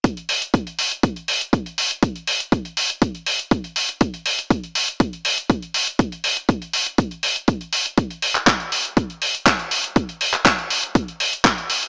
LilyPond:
\new DrumStaff \with { instrumentName = "Drums" } \drummode { \time 4/4 \tempo 4 = 121 <hh bd>16 hh16 hho16 hh16 <hh bd>16 hh16 hho16 hh16 <hh bd>16 hh16 hho16 hh16 <hh bd>16 hh16 hho16 hh16 | <hh bd>16 hh16 hho16 hh16 <hh bd>16 hh16 hho16 hh16 <hh bd>16 hh16 hho16 hh16 <hh bd>16 hh16 hho16 hh16 | <hh bd>16 hh16 hho16 hh16 <hh bd>16 hh16 hho16 hh16 <hh bd>16 hh16 hho16 hh16 <hh bd>16 hh16 hho16 hh16 | <hh bd>16 hh16 hho16 hh16 <hh bd>16 hh16 hho16 hh16 <hh bd>16 hh16 hho16 hh16 <hh bd>16 hh16 hho16 hh16 |
<hh bd>16 hh16 hho16 <hc hh>16 <hc hh bd>16 hh16 hho16 hh16 <hh bd>16 hh16 hho16 hh16 <hc hh bd>16 hh16 hho16 hh16 | <hh bd>16 hh16 hho16 <hc hh>16 <hc hh bd>16 hh16 hho16 hh16 <hh bd>16 hh16 hho16 hh16 <hc hh bd>16 hh16 hho16 hh16 | }